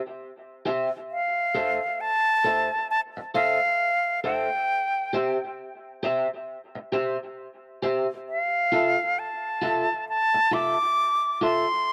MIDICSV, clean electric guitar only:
0, 0, Header, 1, 3, 480
1, 0, Start_track
1, 0, Key_signature, -1, "major"
1, 0, Tempo, 896861
1, 589, Time_signature, 4, 2, 24, 8
1, 6383, End_track
2, 0, Start_track
2, 0, Title_t, "Clean electric guitar"
2, 0, Program_c, 0, 27
2, 350, Note_on_c, 0, 67, 66
2, 354, Note_on_c, 0, 72, 69
2, 357, Note_on_c, 0, 76, 85
2, 474, Note_off_c, 0, 67, 0
2, 476, Note_off_c, 0, 72, 0
2, 478, Note_off_c, 0, 76, 0
2, 828, Note_on_c, 0, 69, 86
2, 832, Note_on_c, 0, 72, 84
2, 835, Note_on_c, 0, 76, 85
2, 953, Note_off_c, 0, 69, 0
2, 955, Note_off_c, 0, 72, 0
2, 957, Note_off_c, 0, 76, 0
2, 1308, Note_on_c, 0, 69, 80
2, 1313, Note_on_c, 0, 72, 79
2, 1317, Note_on_c, 0, 76, 88
2, 1433, Note_off_c, 0, 69, 0
2, 1436, Note_off_c, 0, 72, 0
2, 1438, Note_off_c, 0, 76, 0
2, 1790, Note_on_c, 0, 69, 72
2, 1793, Note_on_c, 0, 72, 81
2, 1797, Note_on_c, 0, 76, 83
2, 1914, Note_off_c, 0, 69, 0
2, 1916, Note_off_c, 0, 72, 0
2, 1918, Note_off_c, 0, 76, 0
2, 2269, Note_on_c, 0, 69, 68
2, 2273, Note_on_c, 0, 72, 71
2, 2277, Note_on_c, 0, 76, 81
2, 2394, Note_off_c, 0, 69, 0
2, 2396, Note_off_c, 0, 72, 0
2, 2398, Note_off_c, 0, 76, 0
2, 2746, Note_on_c, 0, 67, 76
2, 2751, Note_on_c, 0, 72, 83
2, 2754, Note_on_c, 0, 76, 90
2, 2872, Note_off_c, 0, 67, 0
2, 2875, Note_off_c, 0, 72, 0
2, 2876, Note_off_c, 0, 76, 0
2, 3227, Note_on_c, 0, 67, 77
2, 3231, Note_on_c, 0, 72, 79
2, 3235, Note_on_c, 0, 76, 84
2, 3353, Note_off_c, 0, 67, 0
2, 3355, Note_off_c, 0, 72, 0
2, 3357, Note_off_c, 0, 76, 0
2, 3705, Note_on_c, 0, 67, 84
2, 3710, Note_on_c, 0, 72, 82
2, 3713, Note_on_c, 0, 76, 90
2, 3832, Note_off_c, 0, 67, 0
2, 3834, Note_off_c, 0, 72, 0
2, 3836, Note_off_c, 0, 76, 0
2, 4188, Note_on_c, 0, 67, 73
2, 4192, Note_on_c, 0, 72, 77
2, 4195, Note_on_c, 0, 76, 73
2, 4313, Note_off_c, 0, 67, 0
2, 4315, Note_off_c, 0, 72, 0
2, 4317, Note_off_c, 0, 76, 0
2, 4667, Note_on_c, 0, 65, 78
2, 4671, Note_on_c, 0, 69, 76
2, 4675, Note_on_c, 0, 76, 91
2, 4793, Note_off_c, 0, 65, 0
2, 4795, Note_off_c, 0, 69, 0
2, 4797, Note_off_c, 0, 76, 0
2, 5146, Note_on_c, 0, 65, 78
2, 5151, Note_on_c, 0, 69, 79
2, 5154, Note_on_c, 0, 76, 82
2, 5272, Note_off_c, 0, 65, 0
2, 5275, Note_off_c, 0, 69, 0
2, 5276, Note_off_c, 0, 76, 0
2, 5627, Note_on_c, 0, 65, 80
2, 5632, Note_on_c, 0, 69, 77
2, 5635, Note_on_c, 0, 76, 87
2, 5752, Note_off_c, 0, 65, 0
2, 5755, Note_off_c, 0, 69, 0
2, 5757, Note_off_c, 0, 76, 0
2, 6108, Note_on_c, 0, 65, 72
2, 6113, Note_on_c, 0, 69, 72
2, 6116, Note_on_c, 0, 76, 80
2, 6233, Note_off_c, 0, 65, 0
2, 6236, Note_off_c, 0, 69, 0
2, 6237, Note_off_c, 0, 76, 0
2, 6383, End_track
3, 0, Start_track
3, 0, Title_t, "Muted clean electric guitar strokes"
3, 1697, Note_on_c, 9, 29, 43
3, 1750, Note_off_c, 9, 29, 0
3, 3615, Note_on_c, 9, 29, 43
3, 3668, Note_off_c, 9, 29, 0
3, 5536, Note_on_c, 9, 29, 39
3, 5590, Note_off_c, 9, 29, 0
3, 6383, End_track
0, 0, End_of_file